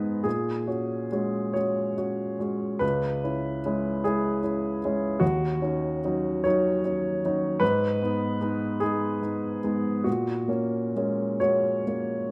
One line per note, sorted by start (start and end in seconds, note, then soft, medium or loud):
0.00 0.28 G#3 soft
0.00 0.28 B3 soft
0.00 0.28 D#4 soft
0.00 0.24 B4 medium
0.24 0.66 A#2 soft
0.24 1.55 G#4 medium
0.67 1.07 C#4 soft
0.67 1.07 F#4 soft
1.12 1.52 G#3 soft
1.12 1.52 C#4 soft
1.12 1.52 F#4 soft
1.53 1.94 G#3 soft
1.53 1.94 C#4 soft
1.53 1.95 F#4 soft
1.53 2.81 C#5 medium
1.97 2.36 C#4 soft
1.97 2.36 F#4 soft
2.39 2.77 G#3 soft
2.39 2.78 C#4 soft
2.39 2.78 F#4 soft
2.79 3.21 C#2 soft
2.79 4.02 B4 medium
3.24 3.60 C#4 soft
3.24 3.60 E4 soft
3.66 4.00 G#3 soft
3.66 4.00 C#4 soft
3.66 4.01 E4 soft
4.04 4.39 G#3 soft
4.04 4.40 C#4 soft
4.04 4.40 E4 soft
4.04 5.22 G#4 medium
4.43 4.78 C#4 soft
4.43 4.78 E4 soft
4.84 5.19 G#3 soft
4.84 5.19 C#4 soft
4.84 5.19 E4 soft
5.20 5.61 D#2 soft
5.20 6.44 F#4 medium
5.62 6.00 C#4 soft
5.62 6.00 D#4 soft
6.05 6.41 F#3 soft
6.05 6.41 C#4 soft
6.05 6.42 D#4 soft
6.44 6.81 F#3 soft
6.44 6.81 C#4 soft
6.44 6.81 D#4 soft
6.44 7.61 C#5 medium
6.85 7.19 C#4 soft
6.85 7.20 D#4 soft
7.25 7.59 F#3 soft
7.25 7.59 C#4 soft
7.25 7.59 D#4 soft
7.60 7.99 G#2 soft
7.60 8.80 B4 medium
8.02 8.38 B3 soft
8.02 8.38 D#4 soft
8.41 8.77 G#3 soft
8.41 8.77 B3 soft
8.41 8.78 D#4 soft
8.80 9.18 G#3 soft
8.80 9.19 B3 soft
8.80 9.19 D#4 soft
8.80 10.06 G#4 medium
9.23 9.60 B3 soft
9.23 9.60 D#4 soft
9.64 10.02 G#3 soft
9.64 10.02 B3 soft
9.64 10.03 D#4 soft
10.04 10.49 A#2 soft
10.04 11.39 F#4 medium
10.48 10.91 A#3 soft
10.48 10.92 C#4 soft
10.96 11.38 G#3 soft
10.96 11.38 A#3 soft
10.96 11.38 C#4 soft
11.40 11.82 G#3 soft
11.40 11.82 A#3 soft
11.40 11.82 C#4 soft
11.40 12.31 F#4 soft
11.40 12.31 C#5 medium
11.87 12.26 A#3 soft
11.87 12.27 C#4 soft